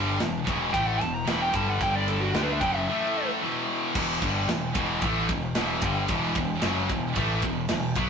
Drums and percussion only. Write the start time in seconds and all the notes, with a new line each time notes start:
0.20 snare, ride
0.47 kick, ride
0.74 kick, ride
1.01 ride
1.27 snare, ride
1.53 kick, ride
1.81 kick, ride
2.08 ride
2.34 snare, ride
2.61 kick, ride
3.95 kick, crash
4.22 kick, ride
4.49 snare, ride
4.75 kick, ride
5.01 kick, ride
5.29 kick, ride
5.55 snare, ride
5.81 kick, ride
6.08 kick, ride
6.35 kick, ride
6.62 snare, ride
6.89 kick, ride
7.16 kick, ride
7.42 kick, ride
7.69 snare, ride
7.95 kick, ride